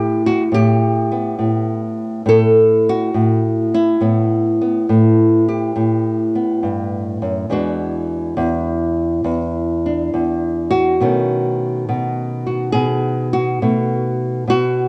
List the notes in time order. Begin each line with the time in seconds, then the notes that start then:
Already playing: A2 E3 G3 B3 G4
0.26 F#4
0.52 A2 G4
1.12 B3
1.39 A2
2.26 A2 A4
2.89 F#4
3.14 A2
3.74 E4
4.01 A2 B3
4.61 B3
4.89 A2
5.48 G4
5.76 A2
6.35 B3
6.63 G2
7.22 F#2
7.50 E2 E3 G#3 D4 F#4
8.37 E2
9.24 E2
9.86 D4
10.14 E2
10.71 F#4
11.01 B2 D#3 A3 C#4
11.89 B2
12.46 F#4
12.72 B2 G#4
13.33 F#4
13.62 B2 A3
14.47 B2 F#4